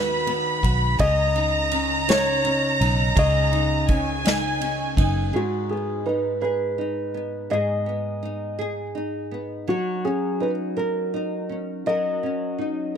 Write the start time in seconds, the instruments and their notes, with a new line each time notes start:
Already playing: fingered electric bass D#2, nylon-string guitar D#3 B3 F#4, grand piano B4, violin section B5
0.26 nylon-string guitar B3, ride
0.63 fingered electric bass B1, nylon-string guitar F#4, kick, ride
0.99 fingered electric bass C#2, nylon-string guitar C#3, grand piano D#5, violin section A#5, kick, ride
1.35 nylon-string guitar D#4, ride
1.72 nylon-string guitar C#4, ride
2.08 nylon-string guitar D#4, grand piano C#5, snare, ride
2.44 nylon-string guitar C#4, ride
2.81 fingered electric bass B1, nylon-string guitar D#4, ride
3.15 fingered electric bass C#2, nylon-string guitar C#3, grand piano D#5, kick, ride
3.52 nylon-string guitar D#4, ride
3.88 nylon-string guitar C#4, violin section G#5, kick, ride
4.24 nylon-string guitar D#4, snare, ride
4.61 nylon-string guitar C#4, ride
4.97 fingered electric bass F#1, nylon-string guitar D#4, violin section G#5, kick, ride
5.33 nylon-string guitar G#2 G#4, grand piano F#4
5.69 nylon-string guitar B3, grand piano G#4
6.06 nylon-string guitar D#4, grand piano B4
6.41 nylon-string guitar G#4, grand piano B4
6.78 nylon-string guitar D#4
7.14 nylon-string guitar B3
7.50 nylon-string guitar G#2 G#4, grand piano D#5
7.86 nylon-string guitar B3
8.23 nylon-string guitar D#4
8.59 nylon-string guitar G#4
8.95 nylon-string guitar D#4
9.31 nylon-string guitar B3
9.68 nylon-string guitar F#3, grand piano F#4
10.05 nylon-string guitar C#4, grand piano G#4
10.40 nylon-string guitar D#4, grand piano B4
10.77 nylon-string guitar A#4, grand piano A#4
11.14 nylon-string guitar D#4
11.49 nylon-string guitar C#4
11.86 nylon-string guitar F#3 A#4, grand piano D#5
12.23 nylon-string guitar C#4
12.59 nylon-string guitar D#4